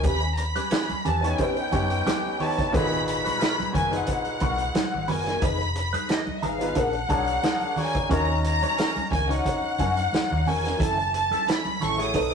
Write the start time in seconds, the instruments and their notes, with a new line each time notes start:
0.03 fingered electric bass D#2, clean electric guitar C#4 G4 B4, violin section B5, kick, closed hi-hat, muted conga, low conga
0.23 muted clean electric guitar stroke
0.34 violin section A#5, closed hi-hat
0.38 violin section B5, muted clean electric guitar stroke
0.55 clean electric guitar C#4 G4 B4, closed hi-hat, high conga
0.71 clean electric guitar C#4 G4 B4, snare, closed hi-hat, muted conga
0.89 muted clean electric guitar stroke, muted fingered electric bass stroke, closed hi-hat, muted conga, high conga
1.05 fingered electric bass E2, clean electric guitar C#4 G4 B4, violin section A5, closed hi-hat, low conga
1.22 grand piano B3 C#4 D#4 G4 C#5, violin section G5, muted clean electric guitar stroke, closed hi-hat
1.38 clean electric guitar C#4 G4 B4, kick, closed hi-hat
1.57 muted clean electric guitar stroke, closed hi-hat
1.71 fingered electric bass F#2, grand piano B3 C#4 D#4 G4 C#5, clean electric guitar C#4 G4 B4, kick, closed hi-hat, high conga
1.90 muted clean electric guitar stroke, closed hi-hat
2.06 clean electric guitar C#4 G4 B4, snare, closed hi-hat, muted conga, high conga
2.24 muted conga
2.39 grand piano B3 D#4 F#4 G4 C#5, violin section A5, muted clean electric guitar stroke, open hi-hat, low conga
2.58 muted clean electric guitar stroke, kick, snare, closed hi-hat
2.72 fingered electric bass G#1, grand piano A#2 D#4 F#4 G#4 B4, clean electric guitar B3 F#4 A#4, kick, closed hi-hat, muted conga, low conga
2.76 violin section B5
2.91 muted clean electric guitar stroke, muted conga
3.07 violin section B5, muted clean electric guitar stroke, closed hi-hat
3.24 clean electric guitar B3 F#4 B4, closed hi-hat, high conga
3.39 clean electric guitar B3 F#4 A#4, snare, closed hi-hat, muted conga
3.58 muted clean electric guitar stroke, muted fingered electric bass stroke, closed hi-hat, high conga
3.72 fingered electric bass F#1, clean electric guitar B3 F#4 A#4, violin section G#5, kick, closed hi-hat, low conga
3.91 grand piano A#2 D#4 F#4 G#4 B4, violin section F#5, muted clean electric guitar stroke, closed hi-hat
4.07 muted clean electric guitar stroke, kick, closed hi-hat
4.25 closed hi-hat, muted conga
4.40 fingered electric bass B1, clean electric guitar B3 F#4 A#4, kick, closed hi-hat, high conga
4.58 muted clean electric guitar stroke, closed hi-hat
4.74 muted clean electric guitar stroke, snare, closed hi-hat, muted conga, high conga
4.92 fingered electric bass G#1, muted clean electric guitar stroke
5.08 fingered electric bass F#1, clean electric guitar B3 F#4 A#4, violin section G#5, open hi-hat, low conga
5.26 clean electric guitar B3 F#4 A#4, snare, closed hi-hat
5.42 fingered electric bass F1, clean electric guitar D#4 G#4 B4, violin section B5, kick, closed hi-hat, muted conga, low conga
5.60 muted clean electric guitar stroke, closed hi-hat, muted conga
5.76 violin section B5, muted clean electric guitar stroke, closed hi-hat
5.93 clean electric guitar D#4 G#4 B4, closed hi-hat, high conga
6.09 clean electric guitar D#4 G#4 B4, violin section D#5, snare, closed hi-hat
6.27 muted clean electric guitar stroke, muted fingered electric bass stroke, high conga
6.39 clean electric guitar D#4, violin section E5, low conga
6.43 fingered electric bass G#1, clean electric guitar G#4 B4, violin section F5, closed hi-hat
6.60 grand piano B3 D#4 F4 G#4 B4, muted clean electric guitar stroke, closed hi-hat
6.75 fingered electric bass A#1, clean electric guitar D4 G#4 A#4, violin section F#5, kick, closed hi-hat, muted conga
6.93 muted clean electric guitar stroke, closed hi-hat
7.08 fingered electric bass B1, grand piano A#3 D4 F#4 G#4 C#5, clean electric guitar D4 G#4 A#4, kick, closed hi-hat, high conga
7.27 muted clean electric guitar stroke, closed hi-hat
7.43 clean electric guitar D4 G#4 A#4, snare, closed hi-hat, muted conga, high conga
7.61 closed hi-hat, muted conga
7.76 grand piano A#3 D4 F#4 G#4 C#5, violin section G#5, muted clean electric guitar stroke, open hi-hat, low conga
7.95 muted clean electric guitar stroke, kick, closed hi-hat
8.09 fingered electric bass D#2, clean electric guitar C#4 F#4 A#4, grand piano C#4 D#4 F#4 A#4 C#5, violin section A#5, kick, closed hi-hat, muted conga, low conga
8.28 muted clean electric guitar stroke
8.43 violin section A#5, muted clean electric guitar stroke, closed hi-hat
8.62 clean electric guitar C#4 F#4 C#5, closed hi-hat, high conga
8.77 clean electric guitar C#4 F#4 A#4, snare, closed hi-hat, muted conga
8.96 muted clean electric guitar stroke, muted fingered electric bass stroke, closed hi-hat, muted conga, high conga
9.11 fingered electric bass C#2, clean electric guitar C#4 F#4 A#4, violin section G#5, kick, closed hi-hat, low conga
9.29 grand piano C#4 D#4 F#4 A#4 C#5, violin section F#5, muted clean electric guitar stroke, closed hi-hat
9.45 muted clean electric guitar stroke, kick, closed hi-hat, muted conga
9.64 muted conga
9.78 fingered electric bass F#2, clean electric guitar C#4 F#4 A#4, kick, closed hi-hat, high conga
9.97 muted clean electric guitar stroke, closed hi-hat
10.13 muted clean electric guitar stroke, snare, closed hi-hat, high conga
10.30 fingered electric bass D#2, muted clean electric guitar stroke, muted conga
10.46 clean electric guitar C#4 F#4 A#4, violin section G#5, open hi-hat, low conga
10.65 clean electric guitar C#4 F#4 A#4, snare, closed hi-hat
10.79 fingered electric bass F#1, clean electric guitar C#4 E4 A4, kick, closed hi-hat, muted conga, low conga
10.83 violin section A5
10.97 muted clean electric guitar stroke, closed hi-hat, muted conga
11.14 violin section A5, muted clean electric guitar stroke, closed hi-hat
11.31 clean electric guitar C#4 E4 A4, closed hi-hat, high conga
11.46 clean electric guitar C#4 E4 A4, violin section B5, snare, closed hi-hat, muted conga
11.65 muted clean electric guitar stroke, muted fingered electric bass stroke, closed hi-hat, muted conga, high conga
11.80 fingered electric bass A1, clean electric guitar C#4 E4 A4, violin section C#6, closed hi-hat, low conga
11.97 grand piano A3 E4 F#4 G#4 C#5, muted clean electric guitar stroke, closed hi-hat
12.01 violin section D#6
12.14 fingered electric bass B1, clean electric guitar D#4 A4 B4, kick, closed hi-hat, muted conga